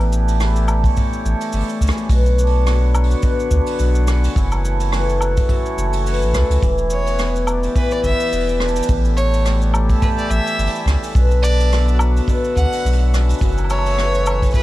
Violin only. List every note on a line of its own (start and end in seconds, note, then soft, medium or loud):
6.91 7.44 C#5 loud
7.76 7.93 B4 medium
7.92 8.04 D5 loud
8.05 8.57 E5 loud
9.17 9.70 C#5 loud
10.02 10.09 B4 loud
10.18 10.32 D5 loud
10.30 10.87 E5 loud
11.42 11.96 D5 loud
12.56 13.09 F#5 loud
13.70 14.51 C#5 loud
14.55 14.63 B4 loud